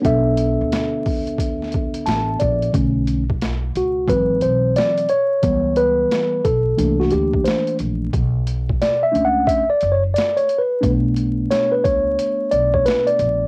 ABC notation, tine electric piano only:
X:1
M:4/4
L:1/16
Q:"Swing 16ths" 1/4=89
K:Bm
V:1 name="Tine electric piano"
z12 a2 d2 | z6 F2 B2 ^B2 d2 c2- | c2 B4 A3 F G2 =c2 z2 | z4 (3d2 e2 f2 (3e2 d2 c2 (3d2 c2 B2- |
B z3 c B c4 d c B d3 |]
V:2 name="Tine electric piano"
[B,DAe]16 | [D,A,C]2 z6 [E,F,^B,]6 z2 | [E,G,B,]6 z2 [E,A,_B,D]8 | z6 [A,CD]2 z8 |
[A,B,D]16 |]